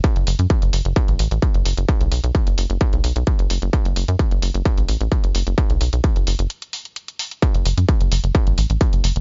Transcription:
<<
  \new Staff \with { instrumentName = "Analog synth bass" } { \clef bass \time 4/4 \key fis \minor \tempo 4 = 130 r16 fis,,16 fis,,16 fis,16 r16 fis,,16 fis,,16 fis,,16 r16 a,,16 a,,16 a,,16 r16 fis,,16 fis,,16 fis,,16 | r16 b,,16 b,,16 b,,16 r16 fis,,16 fis,,16 fis,,16 r16 b,,16 b,,16 b,,16 r16 fis,,16 fis,,16 fis,,16 | r16 fis,,16 fis,,16 fis,16 r16 fis,,16 fis,,16 fis,,16 r16 a,,16 a,,16 a,,16 r16 fis,,16 fis,,16 fis,,16 | r16 b,,16 b,,16 b,,16 r16 fis,,16 fis,,16 fis,,16 r2 |
r16 fis,,16 fis,,16 fis,16 r16 fis,,16 fis,,16 fis,,16 r16 a,,16 a,,16 a,,16 r16 fis,,16 fis,,16 fis,,16 | }
  \new DrumStaff \with { instrumentName = "Drums" } \drummode { \time 4/4 <hh bd>16 hh16 hho16 hh16 <hh bd>16 hh16 hho16 hh16 <hh bd>16 hh16 hho16 hh16 <hh bd>16 hh16 hho16 hh16 | <hh bd>16 hh16 hho16 hh16 <hh bd>16 hh16 hho16 hh16 <hh bd>16 hh16 hho16 hh16 <hh bd>16 hh16 hho16 hh16 | <hh bd>16 hh16 hho16 hh16 <hh bd>16 hh16 hho16 hh16 <hh bd>16 hh16 hho16 hh16 <hh bd>16 hh16 hho16 hh16 | <hh bd>16 hh16 hho16 hh16 <hh bd>16 hh16 hho16 hh16 hh16 hh16 hho16 hh16 hh16 hh16 hho16 hh16 |
<hh bd>16 hh16 hho16 hh16 <hh bd>16 hh16 hho16 hh16 <hh bd>16 hh16 hho16 hh16 <hh bd>16 hh16 hho16 hh16 | }
>>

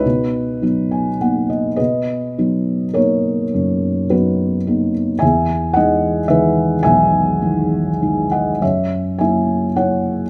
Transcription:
<<
  \new Staff \with { instrumentName = "Felt piano" } { \time 3/4 \key b \major \tempo 4 = 105 << { r4. gis''8 fis''8 dis''8 | r2. | r2. | r2. |
r2. | r2. | } \\ { <dis' fis' b'>2 r4 | <b' dis''>2 <ais' cis''>4~ | <ais' cis''>4 <fis' b'>4. r8 | <e'' gis''>4 <dis'' fis''>4 <b' e''>4 |
<e'' gis''>2~ <e'' gis''>8 <dis'' fis''>8 | <cis'' e''>4 <e'' gis''>4 <cis'' fis''>4 | } >> }
  \new Staff \with { instrumentName = "Felt piano" } { \time 3/4 \key b \major b,4 <fis b dis'>4 <ais b dis'>4 | b,4 <fis b dis'>4 <ais b dis'>4 | fis,4 <fis b dis'>4 <ais b dis'>4 | e,4 <e gis dis'>4 <dis e gis>4 |
b,,4 <dis e gis>4 <e gis dis'>4 | fis,4 <fis ais e'>4 <fis ais e'>4 | }
>>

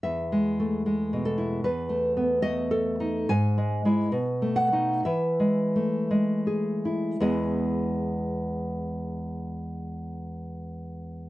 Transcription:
\new Staff \with { instrumentName = "Nylon-string guitar" } { \time 2/4 \key e \major \tempo 4 = 60 << { e''4. a'8 | b'4 dis''4 | gis''4. fis''8 | e''4. r8 |
<e, gis b e' gis'>2~ | <e, gis b e' gis'>2 | } \\ { \tuplet 3/2 { e,8 gis8 a8 gis8 b,8 e'8 } | \tuplet 3/2 { e,8 a8 b8 a8 a'8 dis'8 } | \tuplet 3/2 { gis,8 gis8 <gis e'>8 b,8 a8 <a dis'>8 } | \tuplet 3/2 { e8 gis8 a8 gis8 gis'8 e'8 } |
r2 | r2 | } >> }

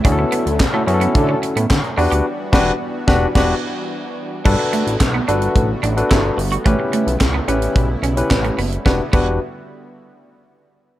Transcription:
<<
  \new Staff \with { instrumentName = "Tine electric piano" } { \time 4/4 \key e \dorian \tempo 4 = 109 <cis' e' fis' gis' a'>8. r8 <cis' e' fis' a'>16 <cis' e' fis' gis' a'>4~ <cis' e' fis' gis' a'>16 r8. <d' fis' g' b'>8 | r8 <d' fis' g' b'>8 r8 <d' fis' g' b' b''>8 <d' fis' g' b' b''>8 r4. | <d' fis' a' b'>4 r8 <d' fis' a' b'>8. r8 <d' fis' a' b'>8. r8 | <cis' e' g' b'>4 r8 <cis' e' g' b'>8. r8 <cis' e' g' b'>8. r8 |
<d' fis' g' b'>16 r16 <d' fis' g' b'>8 r2. | }
  \new Staff \with { instrumentName = "Analog polysynth" } { \time 4/4 \key e \dorian r16 <b b'>16 r16 <a a'>16 r8 <b b'>16 r16 <a a'>8 r4. | r1 | r1 | r1 |
r1 | }
  \new Staff \with { instrumentName = "Clean electric guitar" } { \time 4/4 \key e \dorian d'16 r16 b16 r8 a16 r16 b16 r16 cis'16 r16 b16 r8 d'16 g'16 | r1 | g16 r16 a16 r8 b16 d'16 r8. d'16 r16 e'16 r8 fis'16 | a16 r16 a16 r8 b16 cis'16 r8. cis'16 r8 a16 b16 r16 |
b8 b8 r2. | }
  \new Staff \with { instrumentName = "Analog synth pad" } { \time 4/4 \key e \dorian << { <d e'>2.~ <d e'>8 <e fis'>8~ | <e fis'>1 | <d fis'>1 | <cis e'>1 |
<d g b e' fis'>8 r2. r8 | } \\ { <fis a cis'>2.~ <fis a cis'>8 <g b d'>8~ | <g b d'>1 | <g a b>1~ | <g a b>1 |
r1 | } >> }
  \new Staff \with { instrumentName = "Analog synth bass" } { \clef bass \time 4/4 \key e \dorian d,8 r16 d,8 r16 fis,8 d8 r16 a,16 d16 r16 e,16 d,16 | r8 e,,8 r8 e,,8 e,,8 r4. | g,,16 r8 a,,16 b,,8 g,,8 a,,8 a,,8 g,,8 g,,8 | a,,16 r8 b,,16 cis,8 a,,8 b,,8 b,,8 a,,8 fis,,8 |
e,,16 r16 e,,8 r2. | }
  \new DrumStaff \with { instrumentName = "Drums" } \drummode { \time 4/4 <hh bd>8 hh16 hh16 <hc hh bd sn>8 hh16 hh16 <hh bd>8 hh16 hh16 <hc hh bd sn>16 hh16 hho16 hh16 | r8 <cymc bd sn>8 r8 <bd sn>8 <cymc bd sn>4 r4 | <cymc bd>8 hh16 hh16 <hc hh bd sn>8 hh16 hh16 <hh bd>8 hh16 hh16 <hc hh bd sn>8 hho16 hh16 | <hh bd>8 hh16 hh16 <hc hh bd sn>8 hh16 hh16 <hh bd>8 hh16 hh16 <hc hh bd sn>16 hh16 hho16 hh16 |
<bd sn>8 <cymc bd>8 r4 r4 r4 | }
>>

